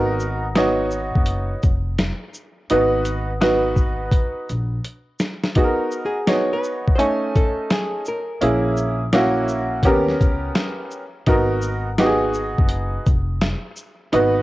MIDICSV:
0, 0, Header, 1, 5, 480
1, 0, Start_track
1, 0, Key_signature, 5, "minor"
1, 0, Tempo, 714286
1, 1816, Time_signature, 4, 2, 24, 8
1, 9693, End_track
2, 0, Start_track
2, 0, Title_t, "Hollow-body jazz guitar"
2, 0, Program_c, 0, 26
2, 3748, Note_on_c, 0, 66, 79
2, 4067, Note_off_c, 0, 66, 0
2, 4069, Note_on_c, 0, 68, 84
2, 4388, Note_on_c, 0, 71, 82
2, 4392, Note_off_c, 0, 68, 0
2, 4670, Note_off_c, 0, 71, 0
2, 4673, Note_on_c, 0, 72, 65
2, 4701, Note_off_c, 0, 72, 0
2, 4705, Note_on_c, 0, 73, 93
2, 4943, Note_off_c, 0, 73, 0
2, 4946, Note_on_c, 0, 69, 87
2, 5187, Note_off_c, 0, 69, 0
2, 5189, Note_on_c, 0, 68, 90
2, 5429, Note_off_c, 0, 68, 0
2, 5432, Note_on_c, 0, 70, 71
2, 6837, Note_off_c, 0, 70, 0
2, 9693, End_track
3, 0, Start_track
3, 0, Title_t, "Upright piano"
3, 0, Program_c, 1, 0
3, 0, Note_on_c, 1, 59, 80
3, 0, Note_on_c, 1, 63, 78
3, 0, Note_on_c, 1, 66, 80
3, 0, Note_on_c, 1, 70, 96
3, 291, Note_off_c, 1, 59, 0
3, 294, Note_off_c, 1, 63, 0
3, 296, Note_off_c, 1, 66, 0
3, 297, Note_off_c, 1, 70, 0
3, 371, Note_on_c, 1, 59, 83
3, 378, Note_on_c, 1, 63, 73
3, 381, Note_on_c, 1, 66, 74
3, 386, Note_on_c, 1, 73, 89
3, 1093, Note_off_c, 1, 59, 0
3, 1096, Note_off_c, 1, 63, 0
3, 1097, Note_off_c, 1, 66, 0
3, 1100, Note_off_c, 1, 73, 0
3, 1816, Note_on_c, 1, 59, 84
3, 1818, Note_on_c, 1, 63, 77
3, 1821, Note_on_c, 1, 66, 74
3, 1826, Note_on_c, 1, 71, 90
3, 2213, Note_off_c, 1, 59, 0
3, 2214, Note_off_c, 1, 63, 0
3, 2216, Note_off_c, 1, 66, 0
3, 2218, Note_off_c, 1, 71, 0
3, 2289, Note_on_c, 1, 59, 77
3, 2291, Note_on_c, 1, 63, 72
3, 2294, Note_on_c, 1, 66, 76
3, 2298, Note_on_c, 1, 71, 90
3, 3011, Note_off_c, 1, 59, 0
3, 3013, Note_off_c, 1, 63, 0
3, 3014, Note_off_c, 1, 66, 0
3, 3016, Note_off_c, 1, 71, 0
3, 3733, Note_on_c, 1, 59, 70
3, 3736, Note_on_c, 1, 63, 66
3, 3740, Note_on_c, 1, 66, 57
3, 3744, Note_on_c, 1, 68, 56
3, 3789, Note_on_c, 1, 70, 73
3, 3798, Note_off_c, 1, 68, 0
3, 4131, Note_off_c, 1, 59, 0
3, 4133, Note_off_c, 1, 63, 0
3, 4135, Note_off_c, 1, 66, 0
3, 4160, Note_off_c, 1, 70, 0
3, 4209, Note_on_c, 1, 59, 62
3, 4214, Note_on_c, 1, 63, 63
3, 4215, Note_on_c, 1, 66, 65
3, 4222, Note_on_c, 1, 73, 74
3, 4682, Note_off_c, 1, 63, 0
3, 4688, Note_on_c, 1, 57, 69
3, 4692, Note_on_c, 1, 61, 63
3, 4692, Note_on_c, 1, 63, 66
3, 4693, Note_off_c, 1, 59, 0
3, 4695, Note_on_c, 1, 80, 77
3, 4696, Note_off_c, 1, 66, 0
3, 4699, Note_off_c, 1, 73, 0
3, 5475, Note_off_c, 1, 57, 0
3, 5477, Note_off_c, 1, 61, 0
3, 5477, Note_off_c, 1, 63, 0
3, 5479, Note_off_c, 1, 80, 0
3, 5651, Note_on_c, 1, 58, 68
3, 5654, Note_on_c, 1, 61, 61
3, 5659, Note_on_c, 1, 64, 69
3, 5662, Note_on_c, 1, 68, 78
3, 6050, Note_off_c, 1, 58, 0
3, 6052, Note_off_c, 1, 61, 0
3, 6054, Note_off_c, 1, 64, 0
3, 6056, Note_off_c, 1, 68, 0
3, 6134, Note_on_c, 1, 58, 79
3, 6137, Note_on_c, 1, 61, 72
3, 6139, Note_on_c, 1, 64, 70
3, 6143, Note_on_c, 1, 66, 95
3, 6609, Note_off_c, 1, 61, 0
3, 6615, Note_off_c, 1, 58, 0
3, 6617, Note_off_c, 1, 64, 0
3, 6617, Note_on_c, 1, 59, 89
3, 6619, Note_on_c, 1, 61, 81
3, 6620, Note_off_c, 1, 66, 0
3, 6622, Note_on_c, 1, 67, 84
3, 6625, Note_on_c, 1, 70, 93
3, 7400, Note_off_c, 1, 59, 0
3, 7401, Note_off_c, 1, 61, 0
3, 7402, Note_off_c, 1, 67, 0
3, 7404, Note_off_c, 1, 70, 0
3, 7570, Note_on_c, 1, 59, 78
3, 7574, Note_on_c, 1, 63, 76
3, 7575, Note_on_c, 1, 66, 83
3, 7583, Note_on_c, 1, 70, 94
3, 7970, Note_off_c, 1, 59, 0
3, 7972, Note_off_c, 1, 63, 0
3, 7972, Note_off_c, 1, 66, 0
3, 7976, Note_off_c, 1, 70, 0
3, 8052, Note_on_c, 1, 59, 83
3, 8055, Note_on_c, 1, 63, 79
3, 8060, Note_on_c, 1, 66, 78
3, 8062, Note_on_c, 1, 67, 73
3, 8105, Note_on_c, 1, 68, 91
3, 8117, Note_off_c, 1, 67, 0
3, 8773, Note_off_c, 1, 59, 0
3, 8774, Note_off_c, 1, 63, 0
3, 8777, Note_off_c, 1, 66, 0
3, 8799, Note_off_c, 1, 68, 0
3, 9491, Note_on_c, 1, 59, 85
3, 9494, Note_on_c, 1, 63, 80
3, 9498, Note_on_c, 1, 66, 80
3, 9502, Note_on_c, 1, 71, 93
3, 9693, Note_off_c, 1, 59, 0
3, 9693, Note_off_c, 1, 63, 0
3, 9693, Note_off_c, 1, 66, 0
3, 9693, Note_off_c, 1, 71, 0
3, 9693, End_track
4, 0, Start_track
4, 0, Title_t, "Upright bass"
4, 0, Program_c, 2, 32
4, 0, Note_on_c, 2, 32, 98
4, 747, Note_off_c, 2, 32, 0
4, 776, Note_on_c, 2, 30, 79
4, 1024, Note_off_c, 2, 30, 0
4, 1101, Note_on_c, 2, 29, 85
4, 1407, Note_off_c, 2, 29, 0
4, 1823, Note_on_c, 2, 32, 92
4, 2753, Note_off_c, 2, 32, 0
4, 3023, Note_on_c, 2, 34, 82
4, 3206, Note_off_c, 2, 34, 0
4, 5657, Note_on_c, 2, 34, 88
4, 6590, Note_off_c, 2, 34, 0
4, 6607, Note_on_c, 2, 39, 95
4, 6796, Note_off_c, 2, 39, 0
4, 6861, Note_on_c, 2, 37, 84
4, 7045, Note_off_c, 2, 37, 0
4, 7574, Note_on_c, 2, 32, 90
4, 8426, Note_off_c, 2, 32, 0
4, 8459, Note_on_c, 2, 30, 75
4, 8706, Note_off_c, 2, 30, 0
4, 8781, Note_on_c, 2, 29, 92
4, 9087, Note_off_c, 2, 29, 0
4, 9495, Note_on_c, 2, 32, 86
4, 9693, Note_off_c, 2, 32, 0
4, 9693, End_track
5, 0, Start_track
5, 0, Title_t, "Drums"
5, 133, Note_on_c, 9, 82, 53
5, 200, Note_off_c, 9, 82, 0
5, 373, Note_on_c, 9, 38, 97
5, 374, Note_on_c, 9, 42, 73
5, 441, Note_off_c, 9, 38, 0
5, 441, Note_off_c, 9, 42, 0
5, 612, Note_on_c, 9, 82, 44
5, 679, Note_off_c, 9, 82, 0
5, 776, Note_on_c, 9, 36, 86
5, 843, Note_off_c, 9, 36, 0
5, 846, Note_on_c, 9, 42, 90
5, 913, Note_off_c, 9, 42, 0
5, 1095, Note_on_c, 9, 42, 40
5, 1095, Note_on_c, 9, 82, 39
5, 1099, Note_on_c, 9, 36, 94
5, 1163, Note_off_c, 9, 42, 0
5, 1163, Note_off_c, 9, 82, 0
5, 1166, Note_off_c, 9, 36, 0
5, 1334, Note_on_c, 9, 42, 59
5, 1336, Note_on_c, 9, 38, 102
5, 1401, Note_off_c, 9, 42, 0
5, 1403, Note_off_c, 9, 38, 0
5, 1572, Note_on_c, 9, 82, 51
5, 1639, Note_off_c, 9, 82, 0
5, 1814, Note_on_c, 9, 42, 80
5, 1881, Note_off_c, 9, 42, 0
5, 2051, Note_on_c, 9, 42, 54
5, 2051, Note_on_c, 9, 82, 51
5, 2118, Note_off_c, 9, 42, 0
5, 2118, Note_off_c, 9, 82, 0
5, 2296, Note_on_c, 9, 38, 108
5, 2296, Note_on_c, 9, 42, 81
5, 2363, Note_off_c, 9, 38, 0
5, 2363, Note_off_c, 9, 42, 0
5, 2529, Note_on_c, 9, 36, 83
5, 2530, Note_on_c, 9, 82, 47
5, 2596, Note_off_c, 9, 36, 0
5, 2597, Note_off_c, 9, 82, 0
5, 2766, Note_on_c, 9, 36, 93
5, 2770, Note_on_c, 9, 42, 93
5, 2833, Note_off_c, 9, 36, 0
5, 2837, Note_off_c, 9, 42, 0
5, 3020, Note_on_c, 9, 42, 39
5, 3020, Note_on_c, 9, 82, 37
5, 3087, Note_off_c, 9, 42, 0
5, 3087, Note_off_c, 9, 82, 0
5, 3256, Note_on_c, 9, 42, 58
5, 3323, Note_off_c, 9, 42, 0
5, 3491, Note_on_c, 9, 82, 55
5, 3494, Note_on_c, 9, 38, 89
5, 3558, Note_off_c, 9, 82, 0
5, 3561, Note_off_c, 9, 38, 0
5, 3653, Note_on_c, 9, 38, 77
5, 3720, Note_off_c, 9, 38, 0
5, 3732, Note_on_c, 9, 42, 83
5, 3735, Note_on_c, 9, 36, 93
5, 3799, Note_off_c, 9, 42, 0
5, 3803, Note_off_c, 9, 36, 0
5, 3974, Note_on_c, 9, 82, 57
5, 4042, Note_off_c, 9, 82, 0
5, 4215, Note_on_c, 9, 38, 109
5, 4216, Note_on_c, 9, 42, 68
5, 4282, Note_off_c, 9, 38, 0
5, 4283, Note_off_c, 9, 42, 0
5, 4459, Note_on_c, 9, 82, 44
5, 4526, Note_off_c, 9, 82, 0
5, 4620, Note_on_c, 9, 36, 89
5, 4687, Note_off_c, 9, 36, 0
5, 4697, Note_on_c, 9, 42, 86
5, 4764, Note_off_c, 9, 42, 0
5, 4942, Note_on_c, 9, 36, 98
5, 4943, Note_on_c, 9, 42, 42
5, 4943, Note_on_c, 9, 82, 38
5, 5009, Note_off_c, 9, 36, 0
5, 5010, Note_off_c, 9, 42, 0
5, 5010, Note_off_c, 9, 82, 0
5, 5177, Note_on_c, 9, 42, 54
5, 5179, Note_on_c, 9, 38, 112
5, 5244, Note_off_c, 9, 42, 0
5, 5246, Note_off_c, 9, 38, 0
5, 5412, Note_on_c, 9, 82, 53
5, 5480, Note_off_c, 9, 82, 0
5, 5655, Note_on_c, 9, 42, 83
5, 5723, Note_off_c, 9, 42, 0
5, 5893, Note_on_c, 9, 82, 54
5, 5960, Note_off_c, 9, 82, 0
5, 6134, Note_on_c, 9, 38, 105
5, 6135, Note_on_c, 9, 42, 76
5, 6201, Note_off_c, 9, 38, 0
5, 6202, Note_off_c, 9, 42, 0
5, 6374, Note_on_c, 9, 82, 46
5, 6441, Note_off_c, 9, 82, 0
5, 6605, Note_on_c, 9, 36, 87
5, 6608, Note_on_c, 9, 42, 101
5, 6672, Note_off_c, 9, 36, 0
5, 6676, Note_off_c, 9, 42, 0
5, 6778, Note_on_c, 9, 38, 33
5, 6845, Note_off_c, 9, 38, 0
5, 6859, Note_on_c, 9, 36, 98
5, 6861, Note_on_c, 9, 42, 39
5, 6861, Note_on_c, 9, 82, 43
5, 6927, Note_off_c, 9, 36, 0
5, 6928, Note_off_c, 9, 42, 0
5, 6928, Note_off_c, 9, 82, 0
5, 7090, Note_on_c, 9, 42, 59
5, 7092, Note_on_c, 9, 38, 108
5, 7158, Note_off_c, 9, 42, 0
5, 7159, Note_off_c, 9, 38, 0
5, 7332, Note_on_c, 9, 82, 50
5, 7399, Note_off_c, 9, 82, 0
5, 7570, Note_on_c, 9, 42, 74
5, 7573, Note_on_c, 9, 36, 100
5, 7637, Note_off_c, 9, 42, 0
5, 7641, Note_off_c, 9, 36, 0
5, 7809, Note_on_c, 9, 82, 55
5, 7876, Note_off_c, 9, 82, 0
5, 8053, Note_on_c, 9, 38, 105
5, 8054, Note_on_c, 9, 42, 76
5, 8120, Note_off_c, 9, 38, 0
5, 8121, Note_off_c, 9, 42, 0
5, 8291, Note_on_c, 9, 82, 45
5, 8358, Note_off_c, 9, 82, 0
5, 8456, Note_on_c, 9, 36, 96
5, 8523, Note_off_c, 9, 36, 0
5, 8525, Note_on_c, 9, 42, 89
5, 8592, Note_off_c, 9, 42, 0
5, 8779, Note_on_c, 9, 42, 40
5, 8779, Note_on_c, 9, 82, 44
5, 8780, Note_on_c, 9, 36, 94
5, 8847, Note_off_c, 9, 36, 0
5, 8847, Note_off_c, 9, 42, 0
5, 8847, Note_off_c, 9, 82, 0
5, 9014, Note_on_c, 9, 42, 62
5, 9015, Note_on_c, 9, 38, 104
5, 9081, Note_off_c, 9, 42, 0
5, 9083, Note_off_c, 9, 38, 0
5, 9250, Note_on_c, 9, 82, 54
5, 9317, Note_off_c, 9, 82, 0
5, 9493, Note_on_c, 9, 42, 76
5, 9561, Note_off_c, 9, 42, 0
5, 9693, End_track
0, 0, End_of_file